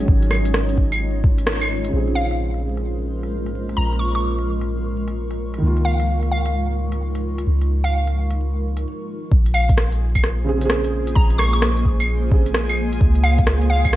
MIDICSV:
0, 0, Header, 1, 7, 480
1, 0, Start_track
1, 0, Key_signature, -5, "minor"
1, 0, Tempo, 461538
1, 86, Time_signature, 4, 2, 24, 8
1, 14520, End_track
2, 0, Start_track
2, 0, Title_t, "Synth pluck"
2, 0, Program_c, 0, 84
2, 2240, Note_on_c, 0, 77, 83
2, 2498, Note_off_c, 0, 77, 0
2, 3918, Note_on_c, 0, 82, 87
2, 4145, Note_off_c, 0, 82, 0
2, 4153, Note_on_c, 0, 85, 78
2, 4257, Note_off_c, 0, 85, 0
2, 4316, Note_on_c, 0, 85, 73
2, 4373, Note_off_c, 0, 85, 0
2, 6083, Note_on_c, 0, 77, 81
2, 6340, Note_off_c, 0, 77, 0
2, 6567, Note_on_c, 0, 77, 89
2, 6822, Note_off_c, 0, 77, 0
2, 8154, Note_on_c, 0, 77, 84
2, 8484, Note_off_c, 0, 77, 0
2, 9921, Note_on_c, 0, 77, 86
2, 10179, Note_off_c, 0, 77, 0
2, 11601, Note_on_c, 0, 82, 93
2, 11826, Note_off_c, 0, 82, 0
2, 11839, Note_on_c, 0, 85, 87
2, 11940, Note_off_c, 0, 85, 0
2, 11993, Note_on_c, 0, 85, 74
2, 12052, Note_off_c, 0, 85, 0
2, 13765, Note_on_c, 0, 77, 86
2, 14021, Note_off_c, 0, 77, 0
2, 14245, Note_on_c, 0, 77, 93
2, 14501, Note_off_c, 0, 77, 0
2, 14520, End_track
3, 0, Start_track
3, 0, Title_t, "Ambient pad"
3, 0, Program_c, 1, 92
3, 0, Note_on_c, 1, 56, 78
3, 0, Note_on_c, 1, 61, 69
3, 0, Note_on_c, 1, 63, 73
3, 0, Note_on_c, 1, 73, 87
3, 82, Note_on_c, 1, 65, 69
3, 1970, Note_off_c, 1, 61, 0
3, 1974, Note_off_c, 1, 63, 0
3, 1977, Note_off_c, 1, 56, 0
3, 1979, Note_off_c, 1, 73, 0
3, 1985, Note_off_c, 1, 65, 0
3, 2002, Note_on_c, 1, 70, 63
3, 2003, Note_on_c, 1, 65, 66
3, 2006, Note_on_c, 1, 56, 73
3, 2009, Note_on_c, 1, 72, 81
3, 3908, Note_off_c, 1, 72, 0
3, 3934, Note_on_c, 1, 85, 85
3, 5806, Note_off_c, 1, 65, 0
3, 5854, Note_on_c, 1, 65, 69
3, 5860, Note_on_c, 1, 63, 66
3, 9163, Note_off_c, 1, 70, 0
3, 9164, Note_off_c, 1, 56, 0
3, 9169, Note_off_c, 1, 85, 0
3, 9177, Note_off_c, 1, 65, 0
3, 9179, Note_off_c, 1, 63, 0
3, 9683, Note_on_c, 1, 58, 79
3, 9683, Note_on_c, 1, 65, 75
3, 9684, Note_on_c, 1, 68, 74
3, 9685, Note_on_c, 1, 72, 81
3, 13487, Note_off_c, 1, 72, 0
3, 13537, Note_on_c, 1, 73, 84
3, 13538, Note_on_c, 1, 63, 71
3, 14520, Note_off_c, 1, 58, 0
3, 14520, Note_off_c, 1, 63, 0
3, 14520, Note_off_c, 1, 65, 0
3, 14520, Note_off_c, 1, 68, 0
3, 14520, Note_off_c, 1, 73, 0
3, 14520, End_track
4, 0, Start_track
4, 0, Title_t, "Synth texture"
4, 0, Program_c, 2, 99
4, 9679, Note_on_c, 2, 68, 86
4, 9683, Note_on_c, 2, 56, 86
4, 14520, Note_off_c, 2, 56, 0
4, 14520, Note_off_c, 2, 68, 0
4, 14520, End_track
5, 0, Start_track
5, 0, Title_t, "Felt piano"
5, 0, Program_c, 3, 0
5, 0, Note_on_c, 3, 54, 88
5, 0, Note_on_c, 3, 61, 82
5, 0, Note_on_c, 3, 68, 99
5, 1242, Note_off_c, 3, 54, 0
5, 1263, Note_off_c, 3, 61, 0
5, 1282, Note_off_c, 3, 68, 0
5, 1963, Note_on_c, 3, 49, 65
5, 2004, Note_on_c, 3, 60, 59
5, 2044, Note_on_c, 3, 68, 70
5, 5804, Note_off_c, 3, 49, 0
5, 5806, Note_on_c, 3, 51, 70
5, 5824, Note_off_c, 3, 60, 0
5, 5844, Note_off_c, 3, 68, 0
5, 5848, Note_on_c, 3, 58, 64
5, 5887, Note_on_c, 3, 65, 73
5, 9186, Note_off_c, 3, 51, 0
5, 9207, Note_off_c, 3, 58, 0
5, 9227, Note_off_c, 3, 65, 0
5, 10862, Note_on_c, 3, 49, 74
5, 10885, Note_on_c, 3, 60, 70
5, 10906, Note_on_c, 3, 68, 84
5, 10983, Note_off_c, 3, 49, 0
5, 10998, Note_on_c, 3, 49, 82
5, 11015, Note_off_c, 3, 60, 0
5, 11026, Note_off_c, 3, 68, 0
5, 11039, Note_on_c, 3, 60, 80
5, 11080, Note_on_c, 3, 68, 96
5, 12765, Note_off_c, 3, 49, 0
5, 12785, Note_off_c, 3, 60, 0
5, 12792, Note_on_c, 3, 49, 79
5, 12806, Note_off_c, 3, 68, 0
5, 12811, Note_on_c, 3, 60, 70
5, 12828, Note_on_c, 3, 68, 87
5, 12929, Note_off_c, 3, 49, 0
5, 12939, Note_off_c, 3, 60, 0
5, 12947, Note_off_c, 3, 68, 0
5, 14520, End_track
6, 0, Start_track
6, 0, Title_t, "808-style bass"
6, 0, Program_c, 4, 38
6, 86, Note_on_c, 4, 32, 87
6, 1989, Note_off_c, 4, 32, 0
6, 2010, Note_on_c, 4, 34, 80
6, 3910, Note_off_c, 4, 34, 0
6, 3927, Note_on_c, 4, 34, 83
6, 5829, Note_off_c, 4, 34, 0
6, 5851, Note_on_c, 4, 37, 89
6, 7751, Note_off_c, 4, 37, 0
6, 7770, Note_on_c, 4, 37, 85
6, 9208, Note_off_c, 4, 37, 0
6, 9689, Note_on_c, 4, 34, 87
6, 11590, Note_off_c, 4, 34, 0
6, 11608, Note_on_c, 4, 34, 92
6, 13510, Note_off_c, 4, 34, 0
6, 13532, Note_on_c, 4, 37, 93
6, 14520, Note_off_c, 4, 37, 0
6, 14520, End_track
7, 0, Start_track
7, 0, Title_t, "Drums"
7, 85, Note_on_c, 9, 36, 115
7, 189, Note_off_c, 9, 36, 0
7, 235, Note_on_c, 9, 42, 33
7, 320, Note_on_c, 9, 37, 58
7, 320, Note_on_c, 9, 75, 56
7, 339, Note_off_c, 9, 42, 0
7, 424, Note_off_c, 9, 37, 0
7, 424, Note_off_c, 9, 75, 0
7, 472, Note_on_c, 9, 42, 54
7, 563, Note_on_c, 9, 37, 99
7, 576, Note_off_c, 9, 42, 0
7, 667, Note_off_c, 9, 37, 0
7, 718, Note_on_c, 9, 42, 33
7, 808, Note_on_c, 9, 36, 57
7, 822, Note_off_c, 9, 42, 0
7, 912, Note_off_c, 9, 36, 0
7, 956, Note_on_c, 9, 42, 57
7, 956, Note_on_c, 9, 75, 66
7, 1060, Note_off_c, 9, 42, 0
7, 1060, Note_off_c, 9, 75, 0
7, 1288, Note_on_c, 9, 36, 105
7, 1392, Note_off_c, 9, 36, 0
7, 1437, Note_on_c, 9, 42, 54
7, 1525, Note_on_c, 9, 37, 102
7, 1541, Note_off_c, 9, 42, 0
7, 1629, Note_off_c, 9, 37, 0
7, 1679, Note_on_c, 9, 42, 47
7, 1679, Note_on_c, 9, 75, 68
7, 1783, Note_off_c, 9, 42, 0
7, 1783, Note_off_c, 9, 75, 0
7, 1918, Note_on_c, 9, 42, 54
7, 2022, Note_off_c, 9, 42, 0
7, 2159, Note_on_c, 9, 42, 30
7, 2263, Note_off_c, 9, 42, 0
7, 2402, Note_on_c, 9, 42, 48
7, 2506, Note_off_c, 9, 42, 0
7, 2643, Note_on_c, 9, 42, 28
7, 2747, Note_off_c, 9, 42, 0
7, 2883, Note_on_c, 9, 42, 52
7, 2987, Note_off_c, 9, 42, 0
7, 3361, Note_on_c, 9, 42, 48
7, 3465, Note_off_c, 9, 42, 0
7, 3602, Note_on_c, 9, 42, 38
7, 3706, Note_off_c, 9, 42, 0
7, 3841, Note_on_c, 9, 42, 52
7, 3945, Note_off_c, 9, 42, 0
7, 4083, Note_on_c, 9, 42, 28
7, 4187, Note_off_c, 9, 42, 0
7, 4320, Note_on_c, 9, 42, 48
7, 4424, Note_off_c, 9, 42, 0
7, 4561, Note_on_c, 9, 42, 29
7, 4665, Note_off_c, 9, 42, 0
7, 4797, Note_on_c, 9, 42, 52
7, 4901, Note_off_c, 9, 42, 0
7, 5279, Note_on_c, 9, 42, 50
7, 5383, Note_off_c, 9, 42, 0
7, 5519, Note_on_c, 9, 42, 41
7, 5623, Note_off_c, 9, 42, 0
7, 5761, Note_on_c, 9, 42, 53
7, 5865, Note_off_c, 9, 42, 0
7, 5998, Note_on_c, 9, 42, 28
7, 6102, Note_off_c, 9, 42, 0
7, 6237, Note_on_c, 9, 42, 49
7, 6341, Note_off_c, 9, 42, 0
7, 6474, Note_on_c, 9, 42, 28
7, 6578, Note_off_c, 9, 42, 0
7, 6714, Note_on_c, 9, 42, 52
7, 6818, Note_off_c, 9, 42, 0
7, 7196, Note_on_c, 9, 42, 50
7, 7300, Note_off_c, 9, 42, 0
7, 7437, Note_on_c, 9, 42, 40
7, 7541, Note_off_c, 9, 42, 0
7, 7679, Note_on_c, 9, 42, 52
7, 7783, Note_off_c, 9, 42, 0
7, 7920, Note_on_c, 9, 42, 27
7, 8024, Note_off_c, 9, 42, 0
7, 8157, Note_on_c, 9, 42, 50
7, 8261, Note_off_c, 9, 42, 0
7, 8397, Note_on_c, 9, 42, 26
7, 8501, Note_off_c, 9, 42, 0
7, 8637, Note_on_c, 9, 42, 48
7, 8741, Note_off_c, 9, 42, 0
7, 9118, Note_on_c, 9, 42, 47
7, 9222, Note_off_c, 9, 42, 0
7, 9689, Note_on_c, 9, 36, 114
7, 9793, Note_off_c, 9, 36, 0
7, 9840, Note_on_c, 9, 42, 32
7, 9926, Note_on_c, 9, 75, 55
7, 9944, Note_off_c, 9, 42, 0
7, 10030, Note_off_c, 9, 75, 0
7, 10080, Note_on_c, 9, 42, 57
7, 10081, Note_on_c, 9, 36, 106
7, 10167, Note_on_c, 9, 37, 100
7, 10184, Note_off_c, 9, 42, 0
7, 10185, Note_off_c, 9, 36, 0
7, 10271, Note_off_c, 9, 37, 0
7, 10320, Note_on_c, 9, 42, 30
7, 10424, Note_off_c, 9, 42, 0
7, 10557, Note_on_c, 9, 42, 59
7, 10557, Note_on_c, 9, 75, 66
7, 10560, Note_on_c, 9, 36, 62
7, 10645, Note_on_c, 9, 37, 67
7, 10661, Note_off_c, 9, 42, 0
7, 10661, Note_off_c, 9, 75, 0
7, 10664, Note_off_c, 9, 36, 0
7, 10749, Note_off_c, 9, 37, 0
7, 11038, Note_on_c, 9, 42, 57
7, 11124, Note_on_c, 9, 37, 102
7, 11142, Note_off_c, 9, 42, 0
7, 11228, Note_off_c, 9, 37, 0
7, 11277, Note_on_c, 9, 42, 46
7, 11381, Note_off_c, 9, 42, 0
7, 11516, Note_on_c, 9, 42, 57
7, 11608, Note_on_c, 9, 36, 122
7, 11620, Note_off_c, 9, 42, 0
7, 11712, Note_off_c, 9, 36, 0
7, 11756, Note_on_c, 9, 42, 34
7, 11847, Note_on_c, 9, 37, 62
7, 11847, Note_on_c, 9, 75, 54
7, 11860, Note_off_c, 9, 42, 0
7, 11951, Note_off_c, 9, 37, 0
7, 11951, Note_off_c, 9, 75, 0
7, 11999, Note_on_c, 9, 42, 57
7, 12085, Note_on_c, 9, 37, 111
7, 12103, Note_off_c, 9, 42, 0
7, 12189, Note_off_c, 9, 37, 0
7, 12241, Note_on_c, 9, 42, 32
7, 12328, Note_on_c, 9, 36, 60
7, 12345, Note_off_c, 9, 42, 0
7, 12432, Note_off_c, 9, 36, 0
7, 12480, Note_on_c, 9, 42, 56
7, 12480, Note_on_c, 9, 75, 66
7, 12584, Note_off_c, 9, 42, 0
7, 12584, Note_off_c, 9, 75, 0
7, 12808, Note_on_c, 9, 36, 105
7, 12912, Note_off_c, 9, 36, 0
7, 12960, Note_on_c, 9, 42, 57
7, 13046, Note_on_c, 9, 37, 105
7, 13064, Note_off_c, 9, 42, 0
7, 13150, Note_off_c, 9, 37, 0
7, 13202, Note_on_c, 9, 42, 47
7, 13202, Note_on_c, 9, 75, 67
7, 13306, Note_off_c, 9, 42, 0
7, 13306, Note_off_c, 9, 75, 0
7, 13443, Note_on_c, 9, 42, 60
7, 13530, Note_on_c, 9, 36, 126
7, 13547, Note_off_c, 9, 42, 0
7, 13634, Note_off_c, 9, 36, 0
7, 13681, Note_on_c, 9, 42, 32
7, 13767, Note_on_c, 9, 75, 49
7, 13785, Note_off_c, 9, 42, 0
7, 13871, Note_off_c, 9, 75, 0
7, 13918, Note_on_c, 9, 42, 55
7, 13923, Note_on_c, 9, 36, 107
7, 14007, Note_on_c, 9, 37, 108
7, 14022, Note_off_c, 9, 42, 0
7, 14027, Note_off_c, 9, 36, 0
7, 14111, Note_off_c, 9, 37, 0
7, 14161, Note_on_c, 9, 42, 32
7, 14265, Note_off_c, 9, 42, 0
7, 14402, Note_on_c, 9, 42, 60
7, 14402, Note_on_c, 9, 75, 65
7, 14403, Note_on_c, 9, 36, 65
7, 14488, Note_on_c, 9, 37, 70
7, 14506, Note_off_c, 9, 42, 0
7, 14506, Note_off_c, 9, 75, 0
7, 14507, Note_off_c, 9, 36, 0
7, 14520, Note_off_c, 9, 37, 0
7, 14520, End_track
0, 0, End_of_file